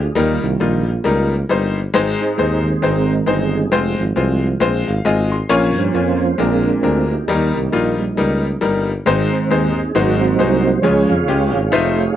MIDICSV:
0, 0, Header, 1, 4, 480
1, 0, Start_track
1, 0, Key_signature, -4, "major"
1, 0, Tempo, 444774
1, 173, Time_signature, 4, 2, 24, 8
1, 13127, End_track
2, 0, Start_track
2, 0, Title_t, "Tonewheel organ"
2, 0, Program_c, 0, 16
2, 0, Note_on_c, 0, 62, 56
2, 0, Note_on_c, 0, 65, 52
2, 0, Note_on_c, 0, 68, 76
2, 139, Note_off_c, 0, 65, 0
2, 140, Note_off_c, 0, 62, 0
2, 163, Note_on_c, 0, 51, 48
2, 168, Note_on_c, 0, 55, 49
2, 178, Note_on_c, 0, 65, 69
2, 181, Note_on_c, 0, 58, 60
2, 188, Note_off_c, 0, 68, 0
2, 899, Note_off_c, 0, 51, 0
2, 901, Note_off_c, 0, 55, 0
2, 1573, Note_off_c, 0, 65, 0
2, 1576, Note_off_c, 0, 58, 0
2, 2379, Note_on_c, 0, 72, 104
2, 2381, Note_on_c, 0, 68, 67
2, 2384, Note_on_c, 0, 63, 69
2, 2846, Note_on_c, 0, 51, 53
2, 2853, Note_on_c, 0, 56, 50
2, 2862, Note_on_c, 0, 60, 55
2, 3042, Note_off_c, 0, 63, 0
2, 3046, Note_on_c, 0, 70, 95
2, 3055, Note_on_c, 0, 63, 72
2, 3072, Note_off_c, 0, 72, 0
2, 3300, Note_off_c, 0, 68, 0
2, 3521, Note_off_c, 0, 63, 0
2, 3523, Note_on_c, 0, 68, 68
2, 3525, Note_off_c, 0, 60, 0
2, 3534, Note_on_c, 0, 63, 55
2, 3538, Note_on_c, 0, 60, 55
2, 3545, Note_off_c, 0, 70, 0
2, 3963, Note_off_c, 0, 51, 0
2, 3966, Note_off_c, 0, 56, 0
2, 3981, Note_off_c, 0, 63, 0
2, 3983, Note_off_c, 0, 60, 0
2, 4001, Note_on_c, 0, 65, 68
2, 4015, Note_on_c, 0, 60, 58
2, 4019, Note_on_c, 0, 56, 54
2, 4024, Note_off_c, 0, 68, 0
2, 4287, Note_off_c, 0, 56, 0
2, 4294, Note_off_c, 0, 60, 0
2, 4296, Note_on_c, 0, 53, 57
2, 4300, Note_on_c, 0, 56, 47
2, 4307, Note_on_c, 0, 60, 58
2, 4938, Note_off_c, 0, 53, 0
2, 4940, Note_off_c, 0, 56, 0
2, 4944, Note_off_c, 0, 60, 0
2, 5406, Note_off_c, 0, 65, 0
2, 5935, Note_on_c, 0, 53, 52
2, 5944, Note_on_c, 0, 58, 44
2, 5947, Note_on_c, 0, 61, 56
2, 6230, Note_on_c, 0, 72, 104
2, 6244, Note_on_c, 0, 65, 77
2, 6854, Note_off_c, 0, 53, 0
2, 6859, Note_off_c, 0, 58, 0
2, 6860, Note_off_c, 0, 61, 0
2, 6864, Note_off_c, 0, 65, 0
2, 6901, Note_on_c, 0, 56, 55
2, 6906, Note_on_c, 0, 70, 103
2, 6909, Note_on_c, 0, 60, 53
2, 6910, Note_on_c, 0, 62, 72
2, 6917, Note_on_c, 0, 65, 73
2, 6920, Note_off_c, 0, 72, 0
2, 7631, Note_off_c, 0, 56, 0
2, 7635, Note_off_c, 0, 60, 0
2, 7638, Note_off_c, 0, 62, 0
2, 7679, Note_on_c, 0, 67, 72
2, 7681, Note_on_c, 0, 58, 53
2, 7684, Note_on_c, 0, 63, 45
2, 7695, Note_off_c, 0, 70, 0
2, 7826, Note_off_c, 0, 65, 0
2, 8302, Note_off_c, 0, 67, 0
2, 8592, Note_off_c, 0, 58, 0
2, 8594, Note_off_c, 0, 63, 0
2, 8626, Note_on_c, 0, 55, 52
2, 8634, Note_on_c, 0, 63, 61
2, 8636, Note_on_c, 0, 58, 47
2, 9265, Note_off_c, 0, 55, 0
2, 9269, Note_off_c, 0, 63, 0
2, 9270, Note_off_c, 0, 58, 0
2, 9771, Note_on_c, 0, 51, 50
2, 9774, Note_on_c, 0, 56, 49
2, 9787, Note_on_c, 0, 60, 63
2, 10070, Note_on_c, 0, 72, 76
2, 10247, Note_off_c, 0, 72, 0
2, 10254, Note_off_c, 0, 60, 0
2, 10261, Note_on_c, 0, 68, 79
2, 10265, Note_on_c, 0, 63, 57
2, 10267, Note_on_c, 0, 60, 51
2, 10505, Note_off_c, 0, 51, 0
2, 10507, Note_off_c, 0, 56, 0
2, 10709, Note_off_c, 0, 63, 0
2, 10710, Note_off_c, 0, 60, 0
2, 10735, Note_on_c, 0, 54, 66
2, 10737, Note_on_c, 0, 58, 51
2, 10739, Note_on_c, 0, 70, 101
2, 10740, Note_on_c, 0, 63, 70
2, 10743, Note_on_c, 0, 60, 62
2, 10745, Note_on_c, 0, 66, 69
2, 10754, Note_off_c, 0, 68, 0
2, 11006, Note_off_c, 0, 63, 0
2, 11006, Note_off_c, 0, 66, 0
2, 11008, Note_off_c, 0, 70, 0
2, 11009, Note_on_c, 0, 72, 111
2, 11019, Note_on_c, 0, 63, 69
2, 11019, Note_on_c, 0, 66, 69
2, 11650, Note_off_c, 0, 63, 0
2, 11650, Note_off_c, 0, 66, 0
2, 11652, Note_off_c, 0, 54, 0
2, 11653, Note_off_c, 0, 58, 0
2, 11656, Note_off_c, 0, 60, 0
2, 11673, Note_on_c, 0, 53, 56
2, 11676, Note_on_c, 0, 56, 58
2, 11678, Note_on_c, 0, 73, 93
2, 11689, Note_on_c, 0, 61, 55
2, 11692, Note_on_c, 0, 68, 76
2, 11695, Note_on_c, 0, 65, 73
2, 11709, Note_off_c, 0, 72, 0
2, 11961, Note_off_c, 0, 73, 0
2, 11963, Note_off_c, 0, 68, 0
2, 11969, Note_on_c, 0, 77, 115
2, 11974, Note_on_c, 0, 73, 64
2, 11976, Note_on_c, 0, 68, 67
2, 12031, Note_off_c, 0, 53, 0
2, 12033, Note_off_c, 0, 56, 0
2, 12040, Note_off_c, 0, 61, 0
2, 12611, Note_off_c, 0, 65, 0
2, 12637, Note_on_c, 0, 57, 61
2, 12637, Note_on_c, 0, 67, 66
2, 12648, Note_on_c, 0, 63, 69
2, 13127, Note_off_c, 0, 57, 0
2, 13127, Note_off_c, 0, 63, 0
2, 13127, Note_off_c, 0, 67, 0
2, 13127, Note_off_c, 0, 68, 0
2, 13127, Note_off_c, 0, 73, 0
2, 13127, Note_off_c, 0, 77, 0
2, 13127, End_track
3, 0, Start_track
3, 0, Title_t, "Upright piano"
3, 0, Program_c, 1, 0
3, 166, Note_on_c, 1, 55, 85
3, 168, Note_on_c, 1, 58, 68
3, 171, Note_on_c, 1, 51, 57
3, 172, Note_on_c, 1, 63, 79
3, 179, Note_on_c, 1, 70, 95
3, 475, Note_off_c, 1, 55, 0
3, 476, Note_off_c, 1, 58, 0
3, 478, Note_off_c, 1, 63, 0
3, 482, Note_off_c, 1, 70, 0
3, 647, Note_on_c, 1, 55, 56
3, 649, Note_on_c, 1, 58, 61
3, 653, Note_on_c, 1, 63, 53
3, 656, Note_on_c, 1, 65, 75
3, 898, Note_off_c, 1, 51, 0
3, 956, Note_off_c, 1, 55, 0
3, 957, Note_off_c, 1, 58, 0
3, 959, Note_off_c, 1, 63, 0
3, 961, Note_off_c, 1, 65, 0
3, 1124, Note_on_c, 1, 55, 77
3, 1128, Note_on_c, 1, 58, 67
3, 1134, Note_on_c, 1, 63, 72
3, 1137, Note_on_c, 1, 70, 86
3, 1435, Note_off_c, 1, 55, 0
3, 1437, Note_off_c, 1, 58, 0
3, 1440, Note_off_c, 1, 63, 0
3, 1441, Note_off_c, 1, 70, 0
3, 1612, Note_on_c, 1, 55, 77
3, 1616, Note_on_c, 1, 58, 72
3, 1619, Note_on_c, 1, 63, 71
3, 1627, Note_on_c, 1, 72, 85
3, 1919, Note_off_c, 1, 55, 0
3, 1921, Note_off_c, 1, 58, 0
3, 1922, Note_off_c, 1, 63, 0
3, 1926, Note_off_c, 1, 72, 0
3, 2090, Note_on_c, 1, 56, 109
3, 2096, Note_on_c, 1, 60, 82
3, 2099, Note_on_c, 1, 44, 66
3, 2100, Note_on_c, 1, 63, 84
3, 2105, Note_on_c, 1, 72, 106
3, 2398, Note_off_c, 1, 56, 0
3, 2401, Note_off_c, 1, 60, 0
3, 2403, Note_off_c, 1, 63, 0
3, 2406, Note_off_c, 1, 72, 0
3, 2566, Note_on_c, 1, 56, 62
3, 2568, Note_on_c, 1, 60, 56
3, 2572, Note_on_c, 1, 63, 61
3, 2580, Note_on_c, 1, 72, 79
3, 2823, Note_off_c, 1, 44, 0
3, 2876, Note_off_c, 1, 56, 0
3, 2877, Note_off_c, 1, 60, 0
3, 2879, Note_off_c, 1, 63, 0
3, 2883, Note_off_c, 1, 72, 0
3, 3045, Note_on_c, 1, 56, 68
3, 3050, Note_on_c, 1, 60, 70
3, 3053, Note_on_c, 1, 63, 60
3, 3060, Note_on_c, 1, 72, 81
3, 3356, Note_off_c, 1, 56, 0
3, 3359, Note_off_c, 1, 60, 0
3, 3360, Note_off_c, 1, 63, 0
3, 3363, Note_off_c, 1, 72, 0
3, 3521, Note_on_c, 1, 56, 58
3, 3526, Note_on_c, 1, 60, 61
3, 3529, Note_on_c, 1, 63, 64
3, 3534, Note_on_c, 1, 72, 81
3, 3834, Note_off_c, 1, 56, 0
3, 3837, Note_off_c, 1, 60, 0
3, 3838, Note_off_c, 1, 63, 0
3, 3841, Note_off_c, 1, 72, 0
3, 4011, Note_on_c, 1, 56, 85
3, 4011, Note_on_c, 1, 60, 87
3, 4016, Note_on_c, 1, 65, 74
3, 4021, Note_on_c, 1, 72, 103
3, 4319, Note_off_c, 1, 56, 0
3, 4320, Note_off_c, 1, 60, 0
3, 4322, Note_off_c, 1, 65, 0
3, 4324, Note_off_c, 1, 72, 0
3, 4487, Note_on_c, 1, 56, 66
3, 4490, Note_on_c, 1, 60, 57
3, 4495, Note_on_c, 1, 65, 64
3, 4501, Note_on_c, 1, 72, 70
3, 4798, Note_off_c, 1, 56, 0
3, 4799, Note_off_c, 1, 60, 0
3, 4802, Note_off_c, 1, 65, 0
3, 4805, Note_off_c, 1, 72, 0
3, 4966, Note_on_c, 1, 56, 84
3, 4969, Note_on_c, 1, 60, 76
3, 4974, Note_on_c, 1, 65, 74
3, 4980, Note_on_c, 1, 72, 93
3, 5264, Note_on_c, 1, 77, 56
3, 5278, Note_off_c, 1, 56, 0
3, 5279, Note_off_c, 1, 60, 0
3, 5281, Note_off_c, 1, 65, 0
3, 5284, Note_off_c, 1, 72, 0
3, 5443, Note_off_c, 1, 77, 0
3, 5448, Note_on_c, 1, 56, 81
3, 5452, Note_on_c, 1, 60, 66
3, 5453, Note_on_c, 1, 80, 65
3, 5459, Note_on_c, 1, 65, 81
3, 5459, Note_on_c, 1, 75, 87
3, 5724, Note_off_c, 1, 80, 0
3, 5738, Note_on_c, 1, 84, 67
3, 5759, Note_off_c, 1, 56, 0
3, 5761, Note_off_c, 1, 60, 0
3, 5764, Note_off_c, 1, 65, 0
3, 5764, Note_off_c, 1, 75, 0
3, 5920, Note_off_c, 1, 84, 0
3, 5929, Note_on_c, 1, 58, 104
3, 5929, Note_on_c, 1, 61, 101
3, 5933, Note_on_c, 1, 65, 104
3, 5935, Note_on_c, 1, 46, 68
3, 5940, Note_on_c, 1, 73, 127
3, 6239, Note_off_c, 1, 58, 0
3, 6240, Note_off_c, 1, 61, 0
3, 6241, Note_off_c, 1, 65, 0
3, 6245, Note_off_c, 1, 73, 0
3, 6411, Note_on_c, 1, 58, 62
3, 6417, Note_on_c, 1, 61, 58
3, 6419, Note_on_c, 1, 65, 63
3, 6425, Note_on_c, 1, 73, 71
3, 6663, Note_off_c, 1, 46, 0
3, 6721, Note_off_c, 1, 58, 0
3, 6724, Note_off_c, 1, 61, 0
3, 6725, Note_off_c, 1, 65, 0
3, 6728, Note_off_c, 1, 73, 0
3, 6886, Note_on_c, 1, 56, 73
3, 6892, Note_on_c, 1, 60, 63
3, 6893, Note_on_c, 1, 46, 58
3, 6897, Note_on_c, 1, 62, 66
3, 6902, Note_on_c, 1, 70, 78
3, 7199, Note_off_c, 1, 56, 0
3, 7202, Note_off_c, 1, 60, 0
3, 7204, Note_off_c, 1, 62, 0
3, 7206, Note_off_c, 1, 70, 0
3, 7369, Note_on_c, 1, 56, 58
3, 7370, Note_on_c, 1, 60, 60
3, 7375, Note_on_c, 1, 62, 62
3, 7381, Note_on_c, 1, 70, 80
3, 7622, Note_off_c, 1, 46, 0
3, 7681, Note_off_c, 1, 56, 0
3, 7681, Note_off_c, 1, 60, 0
3, 7683, Note_off_c, 1, 62, 0
3, 7686, Note_off_c, 1, 70, 0
3, 7857, Note_on_c, 1, 55, 86
3, 7863, Note_on_c, 1, 58, 82
3, 7864, Note_on_c, 1, 51, 56
3, 7868, Note_on_c, 1, 63, 74
3, 7872, Note_on_c, 1, 70, 87
3, 8165, Note_off_c, 1, 55, 0
3, 8167, Note_off_c, 1, 58, 0
3, 8170, Note_off_c, 1, 63, 0
3, 8172, Note_off_c, 1, 70, 0
3, 8336, Note_on_c, 1, 55, 67
3, 8339, Note_on_c, 1, 58, 75
3, 8345, Note_on_c, 1, 63, 67
3, 8345, Note_on_c, 1, 65, 83
3, 8588, Note_off_c, 1, 51, 0
3, 8644, Note_off_c, 1, 55, 0
3, 8646, Note_off_c, 1, 58, 0
3, 8649, Note_off_c, 1, 63, 0
3, 8649, Note_off_c, 1, 65, 0
3, 8821, Note_on_c, 1, 55, 78
3, 8827, Note_on_c, 1, 58, 69
3, 8829, Note_on_c, 1, 63, 75
3, 8833, Note_on_c, 1, 70, 79
3, 9127, Note_off_c, 1, 55, 0
3, 9130, Note_off_c, 1, 58, 0
3, 9131, Note_off_c, 1, 63, 0
3, 9133, Note_off_c, 1, 70, 0
3, 9293, Note_on_c, 1, 55, 82
3, 9296, Note_on_c, 1, 58, 61
3, 9299, Note_on_c, 1, 63, 70
3, 9304, Note_on_c, 1, 70, 82
3, 9603, Note_off_c, 1, 55, 0
3, 9604, Note_off_c, 1, 58, 0
3, 9606, Note_off_c, 1, 63, 0
3, 9608, Note_off_c, 1, 70, 0
3, 9777, Note_on_c, 1, 56, 89
3, 9779, Note_on_c, 1, 60, 73
3, 9782, Note_on_c, 1, 44, 69
3, 9787, Note_on_c, 1, 63, 78
3, 9790, Note_on_c, 1, 72, 96
3, 10085, Note_off_c, 1, 56, 0
3, 10086, Note_off_c, 1, 60, 0
3, 10089, Note_off_c, 1, 63, 0
3, 10091, Note_off_c, 1, 72, 0
3, 10257, Note_on_c, 1, 56, 72
3, 10260, Note_on_c, 1, 60, 56
3, 10265, Note_on_c, 1, 63, 57
3, 10268, Note_on_c, 1, 72, 76
3, 10506, Note_off_c, 1, 44, 0
3, 10564, Note_off_c, 1, 56, 0
3, 10565, Note_off_c, 1, 60, 0
3, 10568, Note_off_c, 1, 63, 0
3, 10570, Note_off_c, 1, 72, 0
3, 10736, Note_on_c, 1, 56, 78
3, 10740, Note_on_c, 1, 44, 68
3, 10740, Note_on_c, 1, 63, 70
3, 10742, Note_on_c, 1, 66, 69
3, 10746, Note_on_c, 1, 72, 82
3, 11044, Note_off_c, 1, 56, 0
3, 11045, Note_off_c, 1, 63, 0
3, 11046, Note_off_c, 1, 66, 0
3, 11048, Note_off_c, 1, 72, 0
3, 11210, Note_on_c, 1, 56, 64
3, 11214, Note_on_c, 1, 63, 66
3, 11219, Note_on_c, 1, 66, 62
3, 11224, Note_on_c, 1, 72, 71
3, 11465, Note_off_c, 1, 44, 0
3, 11520, Note_off_c, 1, 56, 0
3, 11522, Note_off_c, 1, 63, 0
3, 11525, Note_off_c, 1, 66, 0
3, 11527, Note_off_c, 1, 72, 0
3, 11690, Note_on_c, 1, 56, 77
3, 11694, Note_on_c, 1, 61, 66
3, 11698, Note_on_c, 1, 49, 61
3, 11702, Note_on_c, 1, 65, 67
3, 11703, Note_on_c, 1, 73, 84
3, 11999, Note_off_c, 1, 56, 0
3, 12002, Note_off_c, 1, 61, 0
3, 12005, Note_off_c, 1, 65, 0
3, 12006, Note_off_c, 1, 73, 0
3, 12173, Note_on_c, 1, 56, 71
3, 12177, Note_on_c, 1, 61, 62
3, 12180, Note_on_c, 1, 65, 59
3, 12182, Note_on_c, 1, 67, 77
3, 12422, Note_off_c, 1, 49, 0
3, 12480, Note_off_c, 1, 56, 0
3, 12482, Note_off_c, 1, 61, 0
3, 12484, Note_off_c, 1, 65, 0
3, 12485, Note_off_c, 1, 67, 0
3, 12646, Note_on_c, 1, 63, 80
3, 12647, Note_on_c, 1, 57, 100
3, 12656, Note_on_c, 1, 65, 83
3, 12657, Note_on_c, 1, 72, 90
3, 12956, Note_off_c, 1, 57, 0
3, 12956, Note_off_c, 1, 63, 0
3, 12961, Note_off_c, 1, 65, 0
3, 12962, Note_off_c, 1, 72, 0
3, 13127, End_track
4, 0, Start_track
4, 0, Title_t, "Tuba"
4, 0, Program_c, 2, 58
4, 169, Note_on_c, 2, 39, 97
4, 417, Note_off_c, 2, 39, 0
4, 457, Note_on_c, 2, 36, 82
4, 621, Note_off_c, 2, 36, 0
4, 653, Note_on_c, 2, 34, 82
4, 1061, Note_off_c, 2, 34, 0
4, 1134, Note_on_c, 2, 37, 93
4, 1542, Note_off_c, 2, 37, 0
4, 1608, Note_on_c, 2, 31, 77
4, 2018, Note_off_c, 2, 31, 0
4, 2097, Note_on_c, 2, 32, 85
4, 2342, Note_off_c, 2, 32, 0
4, 2580, Note_on_c, 2, 39, 79
4, 2986, Note_off_c, 2, 39, 0
4, 3058, Note_on_c, 2, 32, 88
4, 3465, Note_off_c, 2, 32, 0
4, 3532, Note_on_c, 2, 31, 83
4, 4007, Note_on_c, 2, 29, 87
4, 4023, Note_off_c, 2, 31, 0
4, 4256, Note_off_c, 2, 29, 0
4, 4302, Note_on_c, 2, 32, 85
4, 4465, Note_off_c, 2, 32, 0
4, 4489, Note_on_c, 2, 36, 99
4, 4900, Note_off_c, 2, 36, 0
4, 4971, Note_on_c, 2, 34, 89
4, 5219, Note_off_c, 2, 34, 0
4, 5264, Note_on_c, 2, 32, 90
4, 5427, Note_off_c, 2, 32, 0
4, 5448, Note_on_c, 2, 32, 90
4, 5860, Note_off_c, 2, 32, 0
4, 5925, Note_on_c, 2, 34, 85
4, 6217, Note_on_c, 2, 43, 79
4, 6234, Note_off_c, 2, 34, 0
4, 6384, Note_off_c, 2, 43, 0
4, 6410, Note_on_c, 2, 41, 87
4, 6822, Note_off_c, 2, 41, 0
4, 6887, Note_on_c, 2, 34, 98
4, 7300, Note_off_c, 2, 34, 0
4, 7368, Note_on_c, 2, 38, 94
4, 7781, Note_off_c, 2, 38, 0
4, 7860, Note_on_c, 2, 39, 83
4, 8106, Note_off_c, 2, 39, 0
4, 8154, Note_on_c, 2, 36, 82
4, 8314, Note_off_c, 2, 36, 0
4, 8338, Note_on_c, 2, 34, 70
4, 8747, Note_off_c, 2, 34, 0
4, 8821, Note_on_c, 2, 37, 87
4, 9229, Note_off_c, 2, 37, 0
4, 9297, Note_on_c, 2, 31, 78
4, 9707, Note_off_c, 2, 31, 0
4, 9781, Note_on_c, 2, 32, 105
4, 10026, Note_off_c, 2, 32, 0
4, 10262, Note_on_c, 2, 39, 78
4, 10669, Note_off_c, 2, 39, 0
4, 10739, Note_on_c, 2, 32, 110
4, 11216, Note_on_c, 2, 36, 97
4, 11232, Note_off_c, 2, 32, 0
4, 11624, Note_off_c, 2, 36, 0
4, 11698, Note_on_c, 2, 37, 93
4, 11943, Note_off_c, 2, 37, 0
4, 11983, Note_on_c, 2, 41, 83
4, 12171, Note_on_c, 2, 37, 93
4, 12187, Note_off_c, 2, 41, 0
4, 12462, Note_on_c, 2, 32, 101
4, 12479, Note_off_c, 2, 37, 0
4, 12625, Note_off_c, 2, 32, 0
4, 12656, Note_on_c, 2, 29, 91
4, 13063, Note_off_c, 2, 29, 0
4, 13127, End_track
0, 0, End_of_file